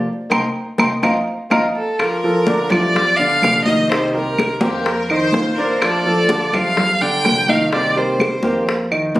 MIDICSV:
0, 0, Header, 1, 8, 480
1, 0, Start_track
1, 0, Key_signature, -2, "major"
1, 0, Tempo, 477707
1, 77, Time_signature, 4, 2, 24, 8
1, 9243, End_track
2, 0, Start_track
2, 0, Title_t, "Violin"
2, 0, Program_c, 0, 40
2, 1761, Note_on_c, 0, 69, 78
2, 2014, Note_on_c, 0, 70, 95
2, 2029, Note_off_c, 0, 69, 0
2, 2711, Note_on_c, 0, 74, 119
2, 2726, Note_off_c, 0, 70, 0
2, 3182, Note_on_c, 0, 77, 123
2, 3197, Note_off_c, 0, 74, 0
2, 3666, Note_off_c, 0, 77, 0
2, 3672, Note_on_c, 0, 75, 89
2, 3912, Note_on_c, 0, 72, 94
2, 3927, Note_off_c, 0, 75, 0
2, 4156, Note_off_c, 0, 72, 0
2, 4173, Note_on_c, 0, 70, 92
2, 4846, Note_off_c, 0, 70, 0
2, 5620, Note_on_c, 0, 72, 87
2, 5867, Note_on_c, 0, 74, 97
2, 5882, Note_off_c, 0, 72, 0
2, 6574, Note_on_c, 0, 77, 117
2, 6589, Note_off_c, 0, 74, 0
2, 7049, Note_on_c, 0, 79, 127
2, 7065, Note_off_c, 0, 77, 0
2, 7531, Note_on_c, 0, 77, 101
2, 7546, Note_off_c, 0, 79, 0
2, 7765, Note_off_c, 0, 77, 0
2, 7775, Note_on_c, 0, 74, 99
2, 8012, Note_on_c, 0, 72, 83
2, 8027, Note_off_c, 0, 74, 0
2, 8725, Note_off_c, 0, 72, 0
2, 9243, End_track
3, 0, Start_track
3, 0, Title_t, "Violin section"
3, 0, Program_c, 1, 48
3, 4647, Note_on_c, 1, 67, 91
3, 4867, Note_off_c, 1, 67, 0
3, 4892, Note_on_c, 1, 70, 106
3, 5126, Note_off_c, 1, 70, 0
3, 5127, Note_on_c, 1, 72, 122
3, 5570, Note_off_c, 1, 72, 0
3, 5601, Note_on_c, 1, 70, 100
3, 5840, Note_off_c, 1, 70, 0
3, 5845, Note_on_c, 1, 69, 97
3, 6802, Note_off_c, 1, 69, 0
3, 9243, End_track
4, 0, Start_track
4, 0, Title_t, "Grand piano"
4, 0, Program_c, 2, 0
4, 320, Note_on_c, 2, 79, 91
4, 320, Note_on_c, 2, 84, 98
4, 323, Note_on_c, 2, 82, 97
4, 472, Note_off_c, 2, 79, 0
4, 473, Note_off_c, 2, 84, 0
4, 474, Note_off_c, 2, 82, 0
4, 797, Note_on_c, 2, 82, 92
4, 799, Note_on_c, 2, 84, 100
4, 800, Note_on_c, 2, 79, 92
4, 951, Note_off_c, 2, 82, 0
4, 952, Note_off_c, 2, 84, 0
4, 953, Note_off_c, 2, 79, 0
4, 1038, Note_on_c, 2, 75, 89
4, 1039, Note_on_c, 2, 82, 97
4, 1042, Note_on_c, 2, 77, 96
4, 1192, Note_off_c, 2, 75, 0
4, 1192, Note_off_c, 2, 82, 0
4, 1194, Note_off_c, 2, 77, 0
4, 1524, Note_on_c, 2, 77, 105
4, 1526, Note_on_c, 2, 82, 104
4, 1527, Note_on_c, 2, 75, 96
4, 1676, Note_off_c, 2, 77, 0
4, 1677, Note_off_c, 2, 75, 0
4, 1677, Note_off_c, 2, 82, 0
4, 2247, Note_on_c, 2, 65, 72
4, 2248, Note_on_c, 2, 53, 74
4, 2253, Note_on_c, 2, 69, 77
4, 2441, Note_off_c, 2, 53, 0
4, 2441, Note_off_c, 2, 65, 0
4, 2444, Note_off_c, 2, 69, 0
4, 2484, Note_on_c, 2, 50, 75
4, 2487, Note_on_c, 2, 62, 86
4, 2492, Note_on_c, 2, 74, 83
4, 2679, Note_off_c, 2, 50, 0
4, 2681, Note_off_c, 2, 62, 0
4, 2684, Note_off_c, 2, 74, 0
4, 2725, Note_on_c, 2, 53, 71
4, 2730, Note_on_c, 2, 65, 79
4, 2733, Note_on_c, 2, 67, 69
4, 3116, Note_off_c, 2, 53, 0
4, 3119, Note_off_c, 2, 65, 0
4, 3121, Note_off_c, 2, 67, 0
4, 3208, Note_on_c, 2, 50, 81
4, 3210, Note_on_c, 2, 62, 82
4, 3213, Note_on_c, 2, 74, 95
4, 3598, Note_off_c, 2, 50, 0
4, 3599, Note_off_c, 2, 62, 0
4, 3601, Note_off_c, 2, 74, 0
4, 3691, Note_on_c, 2, 51, 90
4, 3692, Note_on_c, 2, 63, 83
4, 3693, Note_on_c, 2, 75, 88
4, 3883, Note_off_c, 2, 51, 0
4, 3883, Note_off_c, 2, 63, 0
4, 3884, Note_off_c, 2, 75, 0
4, 3927, Note_on_c, 2, 51, 75
4, 3928, Note_on_c, 2, 63, 79
4, 3933, Note_on_c, 2, 75, 79
4, 4121, Note_off_c, 2, 51, 0
4, 4121, Note_off_c, 2, 63, 0
4, 4124, Note_off_c, 2, 75, 0
4, 4162, Note_on_c, 2, 55, 74
4, 4164, Note_on_c, 2, 67, 79
4, 4168, Note_on_c, 2, 70, 77
4, 4554, Note_off_c, 2, 55, 0
4, 4556, Note_off_c, 2, 67, 0
4, 4558, Note_off_c, 2, 70, 0
4, 4645, Note_on_c, 2, 58, 85
4, 4648, Note_on_c, 2, 70, 82
4, 4649, Note_on_c, 2, 72, 85
4, 5036, Note_off_c, 2, 58, 0
4, 5038, Note_off_c, 2, 70, 0
4, 5039, Note_off_c, 2, 72, 0
4, 5126, Note_on_c, 2, 51, 86
4, 5132, Note_on_c, 2, 63, 86
4, 5136, Note_on_c, 2, 75, 96
4, 5517, Note_off_c, 2, 51, 0
4, 5520, Note_off_c, 2, 63, 0
4, 5523, Note_off_c, 2, 75, 0
4, 5606, Note_on_c, 2, 62, 89
4, 5613, Note_on_c, 2, 74, 97
4, 5997, Note_off_c, 2, 62, 0
4, 6001, Note_off_c, 2, 74, 0
4, 6085, Note_on_c, 2, 53, 80
4, 6092, Note_on_c, 2, 65, 77
4, 6095, Note_on_c, 2, 69, 83
4, 6280, Note_off_c, 2, 53, 0
4, 6284, Note_off_c, 2, 65, 0
4, 6285, Note_off_c, 2, 69, 0
4, 6329, Note_on_c, 2, 50, 74
4, 6334, Note_on_c, 2, 62, 77
4, 6337, Note_on_c, 2, 74, 72
4, 6522, Note_off_c, 2, 50, 0
4, 6525, Note_off_c, 2, 62, 0
4, 6527, Note_off_c, 2, 74, 0
4, 6566, Note_on_c, 2, 53, 74
4, 6569, Note_on_c, 2, 65, 79
4, 6570, Note_on_c, 2, 67, 73
4, 6957, Note_off_c, 2, 53, 0
4, 6959, Note_off_c, 2, 65, 0
4, 6960, Note_off_c, 2, 67, 0
4, 7045, Note_on_c, 2, 50, 91
4, 7046, Note_on_c, 2, 62, 88
4, 7050, Note_on_c, 2, 74, 85
4, 7436, Note_off_c, 2, 50, 0
4, 7437, Note_off_c, 2, 62, 0
4, 7439, Note_off_c, 2, 74, 0
4, 7524, Note_on_c, 2, 51, 88
4, 7526, Note_on_c, 2, 63, 88
4, 7529, Note_on_c, 2, 75, 91
4, 7719, Note_off_c, 2, 51, 0
4, 7720, Note_off_c, 2, 63, 0
4, 7722, Note_off_c, 2, 75, 0
4, 7760, Note_on_c, 2, 51, 84
4, 7767, Note_on_c, 2, 63, 79
4, 7768, Note_on_c, 2, 75, 69
4, 7957, Note_off_c, 2, 51, 0
4, 7960, Note_off_c, 2, 63, 0
4, 7961, Note_off_c, 2, 75, 0
4, 8001, Note_on_c, 2, 55, 76
4, 8004, Note_on_c, 2, 67, 75
4, 8005, Note_on_c, 2, 70, 78
4, 8394, Note_off_c, 2, 55, 0
4, 8396, Note_off_c, 2, 67, 0
4, 8396, Note_off_c, 2, 70, 0
4, 8478, Note_on_c, 2, 58, 84
4, 8480, Note_on_c, 2, 70, 81
4, 8486, Note_on_c, 2, 72, 79
4, 8872, Note_off_c, 2, 58, 0
4, 8873, Note_off_c, 2, 70, 0
4, 8877, Note_off_c, 2, 72, 0
4, 8955, Note_on_c, 2, 51, 85
4, 8959, Note_on_c, 2, 63, 77
4, 8960, Note_on_c, 2, 75, 82
4, 9243, Note_off_c, 2, 51, 0
4, 9243, Note_off_c, 2, 63, 0
4, 9243, Note_off_c, 2, 75, 0
4, 9243, End_track
5, 0, Start_track
5, 0, Title_t, "Steel-string acoustic guitar"
5, 0, Program_c, 3, 25
5, 300, Note_on_c, 3, 58, 100
5, 303, Note_on_c, 3, 63, 94
5, 307, Note_on_c, 3, 60, 96
5, 460, Note_off_c, 3, 63, 0
5, 461, Note_off_c, 3, 58, 0
5, 465, Note_off_c, 3, 60, 0
5, 786, Note_on_c, 3, 58, 112
5, 788, Note_on_c, 3, 60, 106
5, 794, Note_on_c, 3, 63, 104
5, 945, Note_off_c, 3, 60, 0
5, 946, Note_off_c, 3, 58, 0
5, 947, Note_off_c, 3, 63, 0
5, 1031, Note_on_c, 3, 60, 104
5, 1032, Note_on_c, 3, 63, 93
5, 1032, Note_on_c, 3, 65, 104
5, 1187, Note_off_c, 3, 65, 0
5, 1188, Note_off_c, 3, 60, 0
5, 1188, Note_off_c, 3, 63, 0
5, 1509, Note_on_c, 3, 60, 93
5, 1511, Note_on_c, 3, 63, 110
5, 1516, Note_on_c, 3, 65, 102
5, 1666, Note_off_c, 3, 63, 0
5, 1667, Note_off_c, 3, 65, 0
5, 1668, Note_off_c, 3, 60, 0
5, 2001, Note_on_c, 3, 53, 76
5, 2016, Note_on_c, 3, 62, 82
5, 2023, Note_on_c, 3, 65, 84
5, 2710, Note_off_c, 3, 65, 0
5, 2711, Note_off_c, 3, 53, 0
5, 2715, Note_off_c, 3, 62, 0
5, 2722, Note_on_c, 3, 65, 72
5, 2727, Note_on_c, 3, 62, 69
5, 2741, Note_on_c, 3, 57, 66
5, 2951, Note_off_c, 3, 65, 0
5, 2954, Note_off_c, 3, 62, 0
5, 2961, Note_off_c, 3, 57, 0
5, 3434, Note_on_c, 3, 53, 49
5, 3444, Note_on_c, 3, 58, 51
5, 3454, Note_on_c, 3, 62, 53
5, 3457, Note_on_c, 3, 67, 55
5, 3907, Note_off_c, 3, 53, 0
5, 3912, Note_off_c, 3, 58, 0
5, 3917, Note_off_c, 3, 62, 0
5, 3917, Note_on_c, 3, 48, 81
5, 3919, Note_off_c, 3, 67, 0
5, 3922, Note_on_c, 3, 51, 79
5, 3930, Note_on_c, 3, 58, 73
5, 3936, Note_on_c, 3, 60, 79
5, 3939, Note_on_c, 3, 67, 80
5, 4628, Note_off_c, 3, 67, 0
5, 4629, Note_off_c, 3, 48, 0
5, 4631, Note_off_c, 3, 51, 0
5, 4638, Note_off_c, 3, 60, 0
5, 4640, Note_on_c, 3, 67, 82
5, 4650, Note_off_c, 3, 58, 0
5, 4650, Note_on_c, 3, 60, 81
5, 4654, Note_on_c, 3, 58, 70
5, 4664, Note_on_c, 3, 51, 58
5, 4870, Note_off_c, 3, 67, 0
5, 4874, Note_off_c, 3, 51, 0
5, 4875, Note_off_c, 3, 58, 0
5, 4875, Note_off_c, 3, 60, 0
5, 5348, Note_on_c, 3, 51, 54
5, 5361, Note_on_c, 3, 58, 53
5, 5366, Note_on_c, 3, 60, 61
5, 5379, Note_on_c, 3, 65, 62
5, 5824, Note_off_c, 3, 51, 0
5, 5831, Note_off_c, 3, 58, 0
5, 5833, Note_off_c, 3, 60, 0
5, 5839, Note_on_c, 3, 53, 81
5, 5840, Note_off_c, 3, 65, 0
5, 5848, Note_on_c, 3, 57, 79
5, 5859, Note_on_c, 3, 62, 88
5, 5864, Note_on_c, 3, 65, 84
5, 6550, Note_off_c, 3, 53, 0
5, 6554, Note_off_c, 3, 57, 0
5, 6558, Note_off_c, 3, 65, 0
5, 6560, Note_off_c, 3, 62, 0
5, 6570, Note_on_c, 3, 65, 74
5, 6585, Note_on_c, 3, 62, 74
5, 6590, Note_on_c, 3, 57, 66
5, 6795, Note_off_c, 3, 65, 0
5, 6803, Note_off_c, 3, 62, 0
5, 6805, Note_off_c, 3, 57, 0
5, 7293, Note_on_c, 3, 53, 52
5, 7298, Note_on_c, 3, 58, 58
5, 7305, Note_on_c, 3, 62, 53
5, 7314, Note_on_c, 3, 67, 58
5, 7756, Note_off_c, 3, 53, 0
5, 7759, Note_off_c, 3, 58, 0
5, 7762, Note_off_c, 3, 62, 0
5, 7767, Note_off_c, 3, 67, 0
5, 7772, Note_on_c, 3, 48, 84
5, 7777, Note_on_c, 3, 51, 74
5, 7779, Note_on_c, 3, 58, 83
5, 7787, Note_on_c, 3, 60, 86
5, 7796, Note_on_c, 3, 67, 89
5, 8459, Note_off_c, 3, 67, 0
5, 8471, Note_on_c, 3, 67, 81
5, 8472, Note_off_c, 3, 60, 0
5, 8476, Note_off_c, 3, 48, 0
5, 8478, Note_off_c, 3, 51, 0
5, 8483, Note_off_c, 3, 58, 0
5, 8484, Note_on_c, 3, 60, 73
5, 8487, Note_on_c, 3, 58, 66
5, 8493, Note_on_c, 3, 51, 66
5, 8695, Note_off_c, 3, 51, 0
5, 8697, Note_off_c, 3, 58, 0
5, 8704, Note_off_c, 3, 60, 0
5, 8705, Note_off_c, 3, 67, 0
5, 9183, Note_on_c, 3, 51, 47
5, 9194, Note_on_c, 3, 58, 60
5, 9201, Note_on_c, 3, 60, 57
5, 9210, Note_on_c, 3, 65, 54
5, 9243, Note_off_c, 3, 51, 0
5, 9243, Note_off_c, 3, 58, 0
5, 9243, Note_off_c, 3, 60, 0
5, 9243, Note_off_c, 3, 65, 0
5, 9243, End_track
6, 0, Start_track
6, 0, Title_t, "Upright bass"
6, 0, Program_c, 4, 32
6, 309, Note_on_c, 4, 36, 98
6, 492, Note_off_c, 4, 36, 0
6, 795, Note_on_c, 4, 36, 103
6, 975, Note_off_c, 4, 36, 0
6, 1035, Note_on_c, 4, 41, 98
6, 1215, Note_off_c, 4, 41, 0
6, 1518, Note_on_c, 4, 41, 97
6, 1697, Note_off_c, 4, 41, 0
6, 2717, Note_on_c, 4, 31, 92
6, 3398, Note_off_c, 4, 31, 0
6, 3439, Note_on_c, 4, 36, 94
6, 4575, Note_off_c, 4, 36, 0
6, 4634, Note_on_c, 4, 41, 92
6, 5317, Note_off_c, 4, 41, 0
6, 5356, Note_on_c, 4, 34, 89
6, 6494, Note_off_c, 4, 34, 0
6, 6562, Note_on_c, 4, 31, 97
6, 7241, Note_off_c, 4, 31, 0
6, 7279, Note_on_c, 4, 36, 97
6, 8415, Note_off_c, 4, 36, 0
6, 8475, Note_on_c, 4, 41, 84
6, 9157, Note_off_c, 4, 41, 0
6, 9190, Note_on_c, 4, 34, 94
6, 9243, Note_off_c, 4, 34, 0
6, 9243, End_track
7, 0, Start_track
7, 0, Title_t, "Muted steel-string acoustic guitar strokes"
7, 2957, Note_on_c, 9, 29, 66
7, 3058, Note_off_c, 9, 29, 0
7, 4886, Note_on_c, 9, 29, 60
7, 4986, Note_off_c, 9, 29, 0
7, 6811, Note_on_c, 9, 29, 55
7, 6912, Note_off_c, 9, 29, 0
7, 8707, Note_on_c, 9, 29, 68
7, 8808, Note_off_c, 9, 29, 0
7, 9243, End_track
8, 0, Start_track
8, 0, Title_t, "Drums"
8, 311, Note_on_c, 9, 63, 81
8, 318, Note_on_c, 9, 61, 94
8, 318, Note_on_c, 9, 75, 102
8, 412, Note_off_c, 9, 63, 0
8, 418, Note_off_c, 9, 61, 0
8, 418, Note_off_c, 9, 75, 0
8, 786, Note_on_c, 9, 61, 85
8, 789, Note_on_c, 9, 63, 112
8, 799, Note_on_c, 9, 75, 99
8, 886, Note_off_c, 9, 61, 0
8, 890, Note_off_c, 9, 63, 0
8, 899, Note_off_c, 9, 75, 0
8, 1033, Note_on_c, 9, 63, 93
8, 1035, Note_on_c, 9, 61, 98
8, 1040, Note_on_c, 9, 75, 93
8, 1133, Note_off_c, 9, 63, 0
8, 1136, Note_off_c, 9, 61, 0
8, 1140, Note_off_c, 9, 75, 0
8, 1518, Note_on_c, 9, 61, 98
8, 1519, Note_on_c, 9, 63, 103
8, 1521, Note_on_c, 9, 75, 85
8, 1618, Note_off_c, 9, 61, 0
8, 1620, Note_off_c, 9, 63, 0
8, 1621, Note_off_c, 9, 75, 0
8, 2002, Note_on_c, 9, 63, 34
8, 2003, Note_on_c, 9, 75, 67
8, 2006, Note_on_c, 9, 60, 71
8, 2103, Note_off_c, 9, 63, 0
8, 2103, Note_off_c, 9, 75, 0
8, 2107, Note_off_c, 9, 60, 0
8, 2246, Note_on_c, 9, 63, 29
8, 2252, Note_on_c, 9, 60, 36
8, 2346, Note_off_c, 9, 63, 0
8, 2353, Note_off_c, 9, 60, 0
8, 2478, Note_on_c, 9, 63, 94
8, 2489, Note_on_c, 9, 60, 63
8, 2579, Note_off_c, 9, 63, 0
8, 2590, Note_off_c, 9, 60, 0
8, 2716, Note_on_c, 9, 63, 38
8, 2716, Note_on_c, 9, 64, 97
8, 2730, Note_on_c, 9, 60, 36
8, 2734, Note_on_c, 9, 75, 65
8, 2816, Note_off_c, 9, 63, 0
8, 2816, Note_off_c, 9, 64, 0
8, 2830, Note_off_c, 9, 60, 0
8, 2834, Note_off_c, 9, 75, 0
8, 2955, Note_on_c, 9, 63, 38
8, 2955, Note_on_c, 9, 64, 69
8, 2975, Note_on_c, 9, 60, 74
8, 3056, Note_off_c, 9, 63, 0
8, 3056, Note_off_c, 9, 64, 0
8, 3076, Note_off_c, 9, 60, 0
8, 3199, Note_on_c, 9, 63, 33
8, 3299, Note_off_c, 9, 63, 0
8, 3440, Note_on_c, 9, 63, 83
8, 3448, Note_on_c, 9, 75, 62
8, 3458, Note_on_c, 9, 60, 35
8, 3458, Note_on_c, 9, 61, 85
8, 3541, Note_off_c, 9, 63, 0
8, 3549, Note_off_c, 9, 75, 0
8, 3558, Note_off_c, 9, 60, 0
8, 3558, Note_off_c, 9, 61, 0
8, 3673, Note_on_c, 9, 63, 83
8, 3693, Note_on_c, 9, 60, 32
8, 3773, Note_off_c, 9, 63, 0
8, 3794, Note_off_c, 9, 60, 0
8, 3919, Note_on_c, 9, 63, 36
8, 3937, Note_on_c, 9, 60, 75
8, 4020, Note_off_c, 9, 63, 0
8, 4037, Note_off_c, 9, 60, 0
8, 4162, Note_on_c, 9, 63, 29
8, 4172, Note_on_c, 9, 60, 37
8, 4262, Note_off_c, 9, 63, 0
8, 4272, Note_off_c, 9, 60, 0
8, 4403, Note_on_c, 9, 63, 65
8, 4407, Note_on_c, 9, 75, 67
8, 4417, Note_on_c, 9, 60, 64
8, 4504, Note_off_c, 9, 63, 0
8, 4507, Note_off_c, 9, 75, 0
8, 4517, Note_off_c, 9, 60, 0
8, 4630, Note_on_c, 9, 63, 108
8, 4654, Note_on_c, 9, 60, 35
8, 4730, Note_off_c, 9, 63, 0
8, 4754, Note_off_c, 9, 60, 0
8, 4877, Note_on_c, 9, 63, 34
8, 4883, Note_on_c, 9, 60, 70
8, 4978, Note_off_c, 9, 63, 0
8, 4983, Note_off_c, 9, 60, 0
8, 5115, Note_on_c, 9, 63, 38
8, 5123, Note_on_c, 9, 75, 66
8, 5215, Note_off_c, 9, 63, 0
8, 5224, Note_off_c, 9, 75, 0
8, 5348, Note_on_c, 9, 63, 80
8, 5365, Note_on_c, 9, 60, 33
8, 5365, Note_on_c, 9, 61, 87
8, 5448, Note_off_c, 9, 63, 0
8, 5465, Note_off_c, 9, 60, 0
8, 5465, Note_off_c, 9, 61, 0
8, 5617, Note_on_c, 9, 60, 34
8, 5718, Note_off_c, 9, 60, 0
8, 5833, Note_on_c, 9, 63, 33
8, 5845, Note_on_c, 9, 75, 75
8, 5849, Note_on_c, 9, 60, 72
8, 5933, Note_off_c, 9, 63, 0
8, 5945, Note_off_c, 9, 75, 0
8, 5950, Note_off_c, 9, 60, 0
8, 6079, Note_on_c, 9, 63, 31
8, 6090, Note_on_c, 9, 60, 38
8, 6180, Note_off_c, 9, 63, 0
8, 6191, Note_off_c, 9, 60, 0
8, 6319, Note_on_c, 9, 63, 95
8, 6329, Note_on_c, 9, 60, 70
8, 6420, Note_off_c, 9, 63, 0
8, 6429, Note_off_c, 9, 60, 0
8, 6565, Note_on_c, 9, 63, 34
8, 6565, Note_on_c, 9, 64, 94
8, 6569, Note_on_c, 9, 75, 74
8, 6570, Note_on_c, 9, 60, 34
8, 6666, Note_off_c, 9, 63, 0
8, 6666, Note_off_c, 9, 64, 0
8, 6669, Note_off_c, 9, 75, 0
8, 6670, Note_off_c, 9, 60, 0
8, 6804, Note_on_c, 9, 60, 70
8, 6807, Note_on_c, 9, 63, 35
8, 6807, Note_on_c, 9, 64, 74
8, 6904, Note_off_c, 9, 60, 0
8, 6908, Note_off_c, 9, 63, 0
8, 6908, Note_off_c, 9, 64, 0
8, 7044, Note_on_c, 9, 63, 36
8, 7144, Note_off_c, 9, 63, 0
8, 7284, Note_on_c, 9, 60, 35
8, 7284, Note_on_c, 9, 61, 85
8, 7286, Note_on_c, 9, 75, 56
8, 7288, Note_on_c, 9, 63, 76
8, 7384, Note_off_c, 9, 60, 0
8, 7384, Note_off_c, 9, 61, 0
8, 7387, Note_off_c, 9, 75, 0
8, 7389, Note_off_c, 9, 63, 0
8, 7519, Note_on_c, 9, 63, 86
8, 7527, Note_on_c, 9, 60, 33
8, 7620, Note_off_c, 9, 63, 0
8, 7627, Note_off_c, 9, 60, 0
8, 7761, Note_on_c, 9, 63, 36
8, 7763, Note_on_c, 9, 60, 73
8, 7862, Note_off_c, 9, 63, 0
8, 7863, Note_off_c, 9, 60, 0
8, 7993, Note_on_c, 9, 63, 26
8, 8010, Note_on_c, 9, 60, 34
8, 8093, Note_off_c, 9, 63, 0
8, 8111, Note_off_c, 9, 60, 0
8, 8234, Note_on_c, 9, 63, 62
8, 8240, Note_on_c, 9, 75, 66
8, 8253, Note_on_c, 9, 60, 66
8, 8335, Note_off_c, 9, 63, 0
8, 8341, Note_off_c, 9, 75, 0
8, 8353, Note_off_c, 9, 60, 0
8, 8467, Note_on_c, 9, 63, 94
8, 8492, Note_on_c, 9, 60, 33
8, 8568, Note_off_c, 9, 63, 0
8, 8592, Note_off_c, 9, 60, 0
8, 8712, Note_on_c, 9, 63, 37
8, 8728, Note_on_c, 9, 60, 66
8, 8813, Note_off_c, 9, 63, 0
8, 8828, Note_off_c, 9, 60, 0
8, 8958, Note_on_c, 9, 63, 37
8, 8960, Note_on_c, 9, 75, 67
8, 9059, Note_off_c, 9, 63, 0
8, 9061, Note_off_c, 9, 75, 0
8, 9198, Note_on_c, 9, 63, 84
8, 9201, Note_on_c, 9, 60, 33
8, 9201, Note_on_c, 9, 61, 78
8, 9243, Note_off_c, 9, 60, 0
8, 9243, Note_off_c, 9, 61, 0
8, 9243, Note_off_c, 9, 63, 0
8, 9243, End_track
0, 0, End_of_file